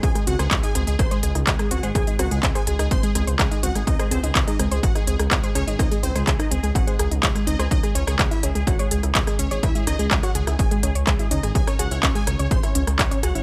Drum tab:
HH |xxxxxxxxxxxxxxxx|xxxxxxxxxxxxxxxx|xxxxxxxxxxxxxxxx|xxxxxxxxxxxxxxxx|
CP |----x-------x---|----x-------x---|----x-------x---|----x-------x---|
SD |-r-r--r-r--r-r--|r-r--r-r--r-r--r|-r--r-r--r-r--r-|r--r-r--r-r--r-r|
BD |o---o---o---o---|o---o---o---o---|o---o---o---o---|o---o---o---o---|

HH |xxxxxxxxxxxxxxxx|xxxxxxxxxxxxxxxx|xxxxxxxxxxxxxxxx|
CP |----x-------x---|----x-------x---|----x-------x---|
SD |-r-r--r-r--r-r--|r-r--r-r--r-r--r|-r--r-r--r-r--r-|
BD |o---o---o---o---|o---o---o---o---|o---o---o---o---|